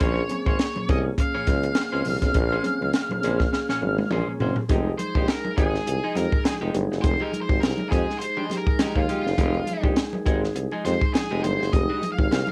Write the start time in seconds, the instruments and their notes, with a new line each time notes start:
Already playing: tonewheel organ A#3 C#4 G#4
0.00 tuba A#1, reed electric piano A#2 F3, clean electric guitar C#4 G#4 C5, lead electric guitar C#5, kick, closed hi-hat, muted conga, low conga
0.18 muted conga
0.29 reed electric piano C4 C#4 G#4, muted clean electric guitar stroke, closed hi-hat, high conga
0.46 tuba G#1, reed electric piano C#4 G#4, clean electric guitar C#4 G#4 C5, lead electric guitar C#5, kick
0.59 reed electric piano C#4 G#4, muted clean electric guitar stroke, snare, closed hi-hat
0.76 reed electric piano A#2 F3, muted clean electric guitar stroke, high conga
0.88 tuba C2, reed electric piano C4 C#4 G#4, clean electric guitar C#4 G#4 C#5, lead electric guitar D#5, kick, closed hi-hat, low conga
1.05 muted clean electric guitar stroke
1.18 reed electric piano C#4 G#4, lead electric guitar F5, muted clean electric guitar stroke, kick, closed hi-hat, muted conga
1.35 reed electric piano A#2 F3, clean electric guitar C#4 G#4 C#5
1.47 tuba C#2, reed electric piano C#4 G#4, muted clean electric guitar stroke, kick, snare, closed hi-hat, high conga
1.63 muted clean electric guitar stroke, closed hi-hat
1.75 muted clean electric guitar stroke, snare, closed hi-hat, muted conga
1.92 tuba C#2, reed electric piano C4 C#4 G#4, clean electric guitar C#4 G#4 C5
2.05 tuba C2, reed electric piano A#2 F3, muted clean electric guitar stroke, open hi-hat, high conga, low conga
2.21 tuba B1, reed electric piano C4 C#4 G#4, muted clean electric guitar stroke, kick, snare, closed hi-hat
2.34 tuba A#1, reed electric piano A#2 F3, muted clean electric guitar stroke, kick, closed hi-hat, muted conga, low conga
2.52 clean electric guitar C#4 G#4 C5
2.63 reed electric piano C4 C#4 G#4, muted clean electric guitar stroke, closed hi-hat, high conga
2.80 tuba C#2, reed electric piano C#4 G#4, muted clean electric guitar stroke, high conga
2.93 snare, closed hi-hat, muted conga
3.09 reed electric piano A#2 F3, muted clean electric guitar stroke, muted conga, high conga
3.21 tuba A#1, reed electric piano C4 C#4 G#4, clean electric guitar C#4 G#4 C5, closed hi-hat, low conga
3.39 muted clean electric guitar stroke, kick, snare
3.52 reed electric piano C#4 G#4, muted clean electric guitar stroke, snare, muted conga
3.68 reed electric piano A#2 F3, clean electric guitar C#4 G#4 C#5, snare, muted conga
3.81 tuba G#1, reed electric piano C#4 G#4, muted clean electric guitar stroke, high conga
3.98 muted clean electric guitar stroke, high tom
4.10 tuba A#1, reed electric piano C#4 G#4, clean electric guitar C#4 G#4 C5, mid tom, muted conga
4.27 reed electric piano A#2 F3, muted clean electric guitar stroke
4.40 tuba F#1, reed electric piano C4 C#4 G#4, clean electric guitar C#4 G#4 C5, floor tom, high conga, low conga
4.56 muted clean electric guitar stroke, floor tom
4.68 tuba F1, tonewheel organ G#3 D#4 G#4, reed electric piano G#3 D#4 G4, clean electric guitar G#3 D#4 G4, kick, closed hi-hat, muted conga, low conga
4.98 reed electric piano F3, lead electric guitar C5, muted clean electric guitar stroke, closed hi-hat, high conga
5.14 tuba A#1, reed electric piano G#3 D#4 G4, clean electric guitar G#3 D#4 G4, kick
5.28 lead electric guitar A#4, muted clean electric guitar stroke, snare, closed hi-hat, muted conga
5.45 muted clean electric guitar stroke, high conga
5.57 tuba G#1, clean electric guitar G#3 D#4 G#4, reed electric piano G#3 D#4 G4, lead electric guitar G#4, kick, closed hi-hat, low conga
5.75 muted clean electric guitar stroke, snare
5.86 tuba C2, reed electric piano D#4 G4, muted clean electric guitar stroke, closed hi-hat, muted conga
6.04 reed electric piano F3, clean electric guitar G#3 D#4 G#4
6.15 tuba F2, reed electric piano G#3 D#4 G4, lead electric guitar A#4, muted clean electric guitar stroke, snare, closed hi-hat, high conga
6.33 muted clean electric guitar stroke, kick
6.45 reed electric piano F3, lead electric guitar G#4, muted clean electric guitar stroke, snare, closed hi-hat
6.61 tuba F1, clean electric guitar G#3 D#4 G4, muted conga
6.74 tuba G1, reed electric piano G#3 D#4 G4, muted clean electric guitar stroke, closed hi-hat, high conga, low conga
6.90 tuba F#1, reed electric piano D#4 G4, muted clean electric guitar stroke, snare
7.02 tuba F1, reed electric piano G#3 D#4 G4, lead electric guitar C5, muted clean electric guitar stroke, kick, closed hi-hat, muted conga, low conga
7.20 clean electric guitar G#3 D#4 G4, lead electric guitar A#4, muted conga
7.32 reed electric piano F3, muted clean electric guitar stroke, closed hi-hat, high conga
7.41 lead electric guitar C5
7.49 tuba G#1, reed electric piano G#3 D#4 G4, muted clean electric guitar stroke, kick
7.60 tuba C2, lead electric guitar A#4, snare, closed hi-hat, muted conga
7.78 muted clean electric guitar stroke, muted conga, high conga
7.90 tuba F2, clean electric guitar G#3 D#4 G4, reed electric piano G#3 D#4 G4, lead electric guitar G#4, kick, closed hi-hat, low conga
8.08 muted clean electric guitar stroke, snare
8.19 reed electric piano D#4 G4, lead electric guitar C5, muted clean electric guitar stroke, closed hi-hat, muted conga
8.37 reed electric piano F3, clean electric guitar G#3 D#4 G#4, muted conga
8.50 reed electric piano G#3 D#4 G4, muted clean electric guitar stroke, snare, closed hi-hat, high conga
8.57 lead electric guitar A#4
8.66 muted clean electric guitar stroke, kick
8.79 tuba D#2, reed electric piano F3, clean electric guitar G#3 D#4 G4, snare, closed hi-hat, muted conga
8.95 tuba D#2, lead electric guitar F4, muted clean electric guitar stroke, kick, muted conga
9.08 reed electric piano G#3 D#4 G4, clean electric guitar G#3 D#4 G4, closed hi-hat, high conga, low conga
9.25 tuba F#1, reed electric piano D#4 G4, muted clean electric guitar stroke, snare
9.37 tuba F1, reed electric piano G#3 D#4 G4, clean electric guitar G#3 D#4 G4, kick, closed hi-hat, low conga
9.54 muted conga
9.67 reed electric piano F3, muted clean electric guitar stroke, closed hi-hat, high conga
9.82 tuba A#1, reed electric piano G#3 D#4 G4, clean electric guitar G#3 D#4 G4, kick
9.96 muted clean electric guitar stroke, snare, closed hi-hat, muted conga
10.13 muted clean electric guitar stroke, muted conga, high conga
10.25 tuba G#1, reed electric piano G#3 D#4 G4, clean electric guitar G#3 D#4 G#4, kick, closed hi-hat, low conga
10.42 muted clean electric guitar stroke, snare
10.55 tuba C2, reed electric piano D#4 G4, muted clean electric guitar stroke, closed hi-hat, muted conga
10.71 reed electric piano F3, clean electric guitar G#3 D#4 G#4, muted conga
10.85 tuba F2, reed electric piano G#3 D#4 G4, lead electric guitar C5, muted clean electric guitar stroke, snare, closed hi-hat, high conga
11.01 muted clean electric guitar stroke, kick
11.13 reed electric piano F3, lead electric guitar G#4, muted clean electric guitar stroke, snare, closed hi-hat, muted conga
11.30 tuba F1, clean electric guitar G#3 D#4 G4, muted conga
11.43 tuba G1, reed electric piano G#3 D#4 G4, lead electric guitar C5, muted clean electric guitar stroke, closed hi-hat, high conga, low conga
11.60 tuba F#1, reed electric piano D#4 G4, muted clean electric guitar stroke, snare
11.72 tuba F1, reed electric piano G#3 D#4 G4, lead electric guitar D#5, muted clean electric guitar stroke, kick, closed hi-hat, muted conga, low conga
11.89 clean electric guitar G#3 D#4 G4
12.02 reed electric piano F3, muted clean electric guitar stroke, closed hi-hat, high conga
12.12 lead electric guitar F5
12.18 tuba G#1, reed electric piano G#3 D#4 G4, muted clean electric guitar stroke, kick
12.31 tuba C2, lead electric guitar F5, snare, closed hi-hat, muted conga
12.47 muted conga, high conga